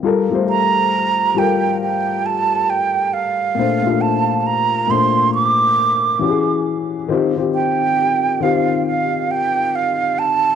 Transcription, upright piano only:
X:1
M:4/4
L:1/16
Q:"Swing 16ths" 1/4=68
K:Gm
V:1 name="Upright piano"
[G,FAB] [G,A,Fc]3 z2 [G,FAB]4- [G,FAB] z4 z | [B,,A,Dc] [B,,A,DF]3 z2 [B,,A,Dc]4- [B,,A,Dc] z [=E,^C^FG^G]3 z | [E,CFG] [E,CFG]3 z2 [E,CFG]4- [E,CFG] z4 z |]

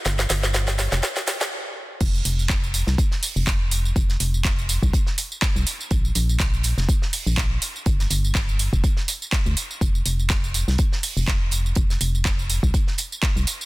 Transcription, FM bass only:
X:1
M:4/4
L:1/16
Q:"Swing 16ths" 1/4=123
K:Gdor
V:1 name="FM bass" clef=bass
G,,,2 G,,,4- G,,, F,,, z8 | F,,,2 F,,,4- F,,, C,, z3 F,,,4- F,,, | F,,,2 F,,,4- F,,, C,, z4 z C,, z2 | B,,,2 B,,,4- B,,, F,,, z3 B,,,3 z2 |
G,,,2 G,,,4- G,,, F,,, z4 z D,, z2 | F,,,2 F,,,4- F,,, C,, z3 F,,,4- F,,, | F,,,2 F,,,4- F,,, C,, z4 z C,, z2 |]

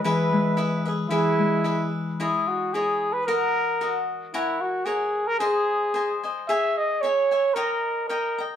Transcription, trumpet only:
X:1
M:2/4
L:1/16
Q:"Swing" 1/4=112
K:E
V:1 name="Trumpet"
B6 z2 | E6 z2 | [K:C#dor] E2 F2 G3 B | A6 z2 |
E2 F2 G3 A | G6 z2 | e2 d2 c4 | A4 A3 z |]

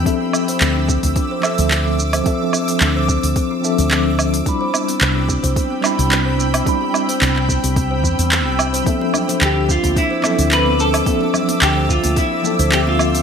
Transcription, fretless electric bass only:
X:1
M:4/4
L:1/16
Q:"Swing 16ths" 1/4=109
K:Ddor
V:1 name="Fretless electric bass" clef=bass
z4 D,,3 D,, z3 D,,4- D,, | z4 D,,3 D,, z3 D,,4- D,, | z4 C,,3 C,, z3 C,,4- C,, | z4 C,,3 C,,3 E,, E,,2 C,,3 |
z4 D,,3 D,, z3 D,,4- D,, | z4 D,,3 D,, z3 D,,4- D,, |]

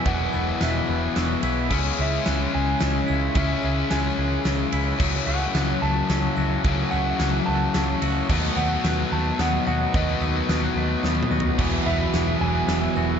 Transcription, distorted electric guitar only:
X:1
M:3/4
L:1/8
Q:1/4=109
K:E
V:1 name="Distorted electric guitar" clef=bass
[E,,B,,E,]6 | [C,G,C]6 | [C,G,C]6 | [F,,C,F,]6 |
[F,,C,F,]6 | [B,,F,B,]6 | [B,,F,B,]6 | [E,,B,,E,]6 |]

